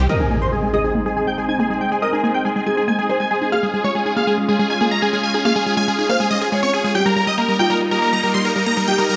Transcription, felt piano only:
0.09 0.65 A#4 medium
0.74 1.29 G#4 medium
2.02 2.58 A#4 medium
2.66 3.07 G#4 medium
3.09 3.50 C5 medium
3.52 4.08 G#4 medium
4.17 4.72 G#4 medium
5.45 6.01 G#4 medium
6.09 6.50 C5 medium
6.52 6.93 C#5 medium
6.95 7.51 G4 medium
7.59 8.15 F4 medium
8.88 9.16 G4 medium

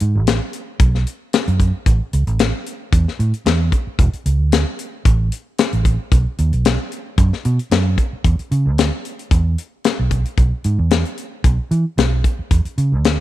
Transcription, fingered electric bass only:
0.01 0.17 G#2 medium
0.15 0.38 A1 medium
0.80 1.03 B1 medium
1.48 1.71 F#2 medium
1.86 1.99 A1 medium
2.13 2.26 C#2 medium
2.27 2.50 A1 medium
2.93 3.05 E2 loud
3.19 3.32 A2 loud
3.46 3.69 E2 loud
3.87 muted fingered electric bass stroke soft
3.99 4.11 E1 loud
4.14 muted fingered electric bass stroke soft
4.26 4.40 C#2 medium
4.40 4.63 D2 medium
5.06 5.29 A1 medium
5.73 5.96 A1 loud
6.12 6.24 B1 loud
6.39 6.51 D#2 medium
6.53 6.76 B1 medium
7.18 7.31 F#2 loud
7.45 7.58 B2 loud
7.71 7.95 F#2 loud
8.13 muted fingered electric bass stroke soft
8.25 8.37 E2 medium
8.39 muted fingered electric bass stroke soft
8.51 8.67 C#3 medium
8.66 8.89 D2 medium
9.31 9.55 E2 medium
9.99 10.23 B1 medium
10.38 10.51 B1 medium
10.65 10.77 G#2 medium
10.79 11.02 E2 medium
11.44 11.57 B1 loud
11.71 11.84 E3 medium
11.97 12.21 B1 loud
12.39 muted fingered electric bass stroke soft
12.51 12.64 E2 medium
12.65 muted fingered electric bass stroke soft
12.78 12.94 C#3 medium
12.92 13.16 D2 medium

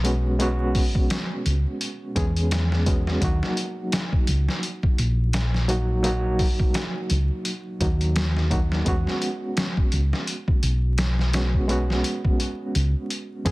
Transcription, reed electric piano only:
0.04 0.36 G#3 loud
0.04 0.36 B3 medium
0.04 0.37 C#4 medium
0.04 0.37 F#4 loud
0.39 2.12 G#3 medium
0.39 2.13 B3 medium
0.39 2.13 C#4 medium
0.39 2.14 F#4 loud
2.16 2.83 G#3 medium
2.16 2.83 B3 medium
2.16 2.83 C#4 medium
2.16 2.84 G#4 loud
2.86 3.18 G#3 medium
2.86 3.18 B3 medium
2.86 3.19 C#4 medium
2.86 3.19 F#4 medium
3.21 5.65 F#3 medium
3.21 5.65 A#3 medium
3.21 5.66 D#4 medium
3.21 5.67 F#4 loud
5.68 6.00 F#3 loud
5.68 6.01 A#3 medium
5.68 6.01 D#4 medium
5.68 6.01 F#4 loud
6.03 7.76 F#3 medium
6.03 7.77 A#3 medium
6.03 7.78 D#4 medium
6.03 7.78 F#4 loud
7.81 8.48 F#3 medium
7.81 8.48 A#3 medium
7.81 8.48 D#4 medium
7.81 8.49 F#4 medium
8.51 8.83 F#3 medium
8.51 8.83 A#3 medium
8.51 8.83 D#4 medium
8.51 8.84 F#4 medium
8.85 11.29 G#3 medium
8.85 11.30 B3 medium
8.85 11.31 C#4 medium
8.85 11.31 F#4 loud
11.33 11.65 G#3 medium
11.33 11.66 B3 medium
11.33 11.66 C#4 medium
11.33 11.66 F#4 loud
11.68 13.41 G#3 medium
11.68 13.42 B3 medium
11.68 13.43 C#4 medium
11.68 13.43 F#4 medium
13.45 13.51 G#3 medium
13.45 13.51 B3 medium
13.45 13.51 C#4 medium
13.45 13.51 G#4 loud

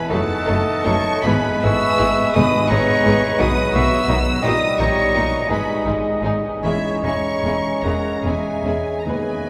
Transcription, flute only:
0.09 0.86 F#5 loud
0.85 1.27 A5 loud
1.25 1.66 G#5 loud
1.64 2.34 C#6 loud
2.35 2.70 B5 loud
2.69 3.40 A#5 loud
3.38 3.71 B5 loud
3.71 4.17 C#6 loud
4.41 4.76 A#5 loud
4.78 5.49 A#5 loud
5.48 5.84 G#5 medium
6.64 7.05 C#5 medium
7.04 7.86 A#5 medium
7.84 8.25 F#5 medium
8.24 9.07 E5 medium
9.08 9.49 D#5 medium

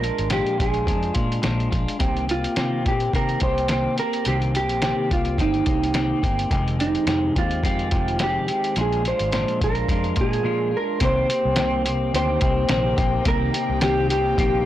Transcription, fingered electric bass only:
0.00 0.10 A#1 medium
0.19 0.41 G#1 medium
0.60 0.88 A#1 medium
0.87 1.10 F2 medium
1.16 1.38 A#2 medium
1.44 1.67 A#1 medium
1.73 1.85 A#1 medium
2.00 2.45 C2 medium
2.57 2.80 C3 medium
2.86 3.08 A#2 medium
3.14 3.36 C3 medium
3.42 3.86 C2 medium
4.26 4.70 C2 medium
4.70 4.92 A#1 medium
5.11 5.40 C2 medium
5.38 5.61 G1 medium
5.67 6.12 C2 loud
6.23 6.46 G1 medium
6.51 6.96 F1 medium
7.07 7.29 F2 medium
7.37 7.64 D#2 medium
7.64 7.94 F2 loud
7.92 8.37 F1 medium
8.77 9.12 A#1 medium
9.20 9.43 G#1 medium
9.62 9.84 A#1 medium
9.89 10.11 F2 medium
10.17 10.40 A#2 loud
11.01 11.24 C2 medium
11.45 12.11 C2 medium
12.14 12.36 D2 loud
12.42 12.64 C2 loud
12.70 12.92 A#1 medium
12.98 13.21 A#1 medium
13.26 13.48 C2 loud
13.70 14.35 C2 loud
14.38 14.61 A#1 medium

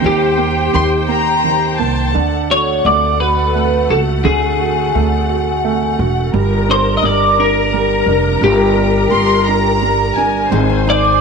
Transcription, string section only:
0.00 2.10 C5 medium
0.00 2.09 G5 medium
2.15 6.30 A3 medium
2.15 6.30 F#5 medium
6.35 10.48 A#4 medium
6.35 10.48 A#5 medium
10.51 11.21 C5 medium
10.51 11.21 G#5 medium

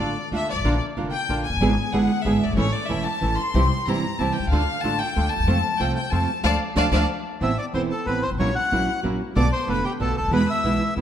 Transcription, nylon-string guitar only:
0.00 0.17 D3 medium
0.00 0.17 A3 medium
0.00 0.17 D4 medium
0.00 0.17 F4 medium
0.32 0.49 D3 soft
0.32 0.49 A3 soft
0.32 0.50 D4 medium
0.32 0.50 F4 medium
0.65 0.74 D3 medium
0.65 0.74 A#3 medium
0.65 0.74 D4 medium
0.65 0.74 F4 medium
0.97 1.14 D3 medium
0.97 1.14 A#3 medium
0.97 1.14 D4 medium
0.97 1.14 F4 medium
1.29 1.46 D3 medium
1.29 1.46 A#3 medium
1.29 1.46 D4 medium
1.29 1.46 F4 medium
1.61 1.70 D3 medium
1.61 1.70 G#3 medium
1.61 1.70 B3 medium
1.61 1.70 E4 medium
1.61 1.71 G#4 medium
1.92 2.09 D3 medium
1.92 2.10 G#3 medium
1.92 2.10 B3 medium
1.92 2.10 E4 medium
1.92 2.10 G#4 medium
2.25 2.42 D3 medium
2.25 2.42 G#3 medium
2.25 2.42 B3 medium
2.25 2.42 E4 medium
2.25 2.42 G#4 medium
2.57 2.66 E3 medium
2.57 2.66 A3 medium
2.57 2.66 C#4 medium
2.57 2.67 E4 medium
2.89 3.06 E3 medium
2.89 3.06 A3 medium
2.89 3.06 C#4 medium
2.89 3.07 E4 medium
3.21 3.39 E3 medium
3.21 3.39 A3 medium
3.21 3.39 C#4 soft
3.21 3.39 E4 medium
3.55 3.64 C3 medium
3.55 3.64 E3 medium
3.55 3.64 G3 medium
3.55 3.64 C4 medium
3.55 3.64 E4 medium
3.87 4.04 C3 medium
3.87 4.04 E3 medium
3.87 4.05 G3 medium
3.87 4.04 C4 medium
3.87 4.05 E4 medium
4.19 4.36 C3 medium
4.19 4.36 E3 medium
4.19 4.37 G3 medium
4.19 4.37 C4 medium
4.19 4.37 E4 medium
4.52 4.61 D3 medium
4.52 4.61 A3 medium
4.52 4.61 D4 medium
4.52 4.61 F4 medium
4.84 5.01 D3 medium
4.84 5.01 A3 medium
4.84 5.01 D4 medium
4.84 5.01 F4 medium
5.16 5.33 D3 medium
5.16 5.33 A3 medium
5.16 5.33 D4 medium
5.16 5.33 F4 medium
5.47 5.56 C3 medium
5.47 5.57 F3 medium
5.47 5.57 A3 loud
5.47 5.57 C4 medium
5.47 5.57 F4 medium
5.79 5.97 C3 medium
5.79 5.97 F3 medium
5.79 5.97 A3 medium
5.79 5.97 C4 medium
5.79 5.97 F4 medium
6.12 6.29 C3 medium
6.12 6.29 F3 medium
6.12 6.29 A3 medium
6.12 6.29 C4 medium
6.12 6.29 F4 medium
6.44 6.54 F3 medium
6.44 6.54 A3 loud
6.44 6.54 D4 medium
6.76 6.87 F3 medium
6.76 6.86 A3 medium
6.76 6.86 D4 medium
6.92 7.03 F3 medium
6.92 7.03 A3 medium
6.92 7.03 D4 medium
7.41 7.51 E3 medium
7.41 7.51 B3 medium
7.41 7.51 C4 medium
7.41 7.51 E4 medium
7.74 7.91 E3 medium
7.74 7.92 B3 medium
7.74 7.91 C4 medium
7.74 7.92 E4 medium
8.07 8.24 E3 medium
8.07 8.24 B3 medium
8.07 8.24 C4 medium
8.07 8.25 E4 soft
8.40 8.49 F#3 medium
8.40 8.49 A#3 medium
8.40 8.49 C#4 medium
8.40 8.49 E4 medium
8.72 8.89 F#3 medium
8.72 8.89 A#3 medium
8.72 8.89 C#4 medium
8.72 8.89 E4 medium
9.03 9.20 F#3 medium
9.03 9.21 A#3 medium
9.03 9.21 C#4 medium
9.03 9.21 E4 medium
9.35 9.44 B2 medium
9.35 9.45 D3 medium
9.35 9.45 A3 medium
9.35 9.45 B3 medium
9.35 9.45 F4 medium
9.68 9.84 B2 medium
9.68 9.85 D3 medium
9.68 9.85 A3 medium
9.68 9.85 B3 medium
9.68 9.85 F4 medium
10.00 10.17 B2 soft
10.00 10.17 D3 medium
10.00 10.17 A3 medium
10.00 10.17 B3 medium
10.00 10.17 F4 medium
10.32 10.41 B2 medium
10.32 10.41 E3 medium
10.32 10.41 G#3 medium
10.32 10.41 B3 medium
10.32 10.41 E4 medium
10.64 10.81 B2 medium
10.64 10.81 E3 medium
10.64 10.81 G#3 medium
10.64 10.82 B3 medium
10.64 10.82 E4 medium
10.97 11.01 B2 soft
10.97 11.01 E3 soft
10.97 11.01 G#3 soft
10.97 11.01 B3 medium
10.97 11.01 E4 medium

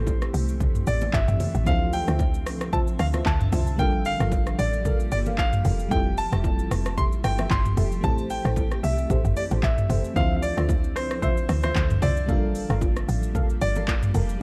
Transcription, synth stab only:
1.66 2.04 F4 loud
1.66 2.04 C5 medium
1.66 2.04 E5 loud
2.08 2.16 F4 medium
2.08 2.17 C5 medium
2.08 2.17 E5 medium
2.73 2.83 F4 loud
2.73 2.84 C5 medium
2.73 2.84 E5 loud
3.14 3.23 F4 medium
3.14 3.23 C5 medium
3.14 3.23 E5 medium
3.52 3.63 F4 medium
3.52 3.63 C5 medium
3.52 3.63 E5 medium
3.79 4.17 A4 loud
3.79 4.17 A#4 medium
3.79 4.17 F5 loud
4.20 4.29 A4 medium
4.20 4.29 A#4 medium
4.20 4.29 F5 medium
4.85 4.96 A4 loud
4.85 4.96 A#4 medium
4.85 4.96 F5 loud
5.26 5.35 A4 medium
5.26 5.35 A#4 medium
5.26 5.35 F5 medium
5.65 5.76 A4 medium
5.65 5.76 A#4 medium
5.65 5.76 F5 medium
5.91 6.29 G4 loud
5.91 6.29 A4 medium
5.91 6.29 E5 loud
6.32 6.41 G4 medium
6.32 6.41 A4 medium
6.32 6.42 E5 medium
6.97 7.08 G4 loud
6.97 7.08 A4 medium
6.97 7.09 E5 loud
7.39 7.47 G4 medium
7.39 7.48 A4 medium
7.39 7.48 E5 medium
7.77 7.88 G4 medium
7.77 7.88 A4 medium
7.77 7.88 E5 medium
8.04 8.41 G4 medium
8.04 8.41 A4 medium
8.04 8.42 C5 loud
8.45 8.54 G4 medium
8.45 8.54 A4 medium
8.45 8.54 C5 medium
9.10 9.21 G4 loud
9.10 9.21 A4 medium
9.10 9.21 C5 loud
9.51 9.60 G4 medium
9.51 9.60 A4 medium
9.51 9.60 C5 medium
9.89 10.00 G4 medium
9.89 10.00 A4 medium
9.89 10.01 C5 medium
10.16 10.54 F4 medium
10.16 10.54 C5 medium
10.16 10.54 E5 loud
10.57 10.66 F4 medium
10.57 10.66 C5 medium
10.57 10.66 E5 medium
11.22 11.33 F4 loud
11.22 11.33 C5 medium
11.22 11.33 E5 loud
11.63 11.72 F4 medium
11.63 11.72 C5 medium
11.63 11.73 E5 medium
12.02 12.13 F4 medium
12.02 12.13 C5 medium
12.02 12.13 E5 medium
12.28 12.66 A4 loud
12.28 12.66 A#4 medium
12.28 12.66 F5 loud
12.70 12.79 A4 medium
12.70 12.79 A#4 medium
12.70 12.79 F5 medium
13.35 13.45 A4 medium
13.35 13.46 A#4 medium
13.35 13.46 F5 loud
13.76 13.85 A4 medium
13.76 13.85 A#4 medium
13.76 13.85 F5 medium
14.14 14.25 A4 medium
14.14 14.25 A#4 medium
14.14 14.25 F5 medium

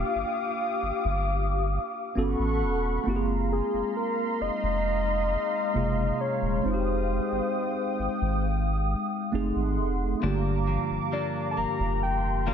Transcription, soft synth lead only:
0.00 1.95 F5 loud
3.52 3.93 G#4 loud
3.97 4.43 A#4 loud
4.42 6.22 D#5 loud
6.21 6.67 C#5 loud
6.65 8.44 C5 loud
11.13 11.48 D5 loud
11.51 11.60 A5 medium
11.58 12.02 A#5 loud
12.03 12.44 G5 loud
12.48 12.54 F5 loud

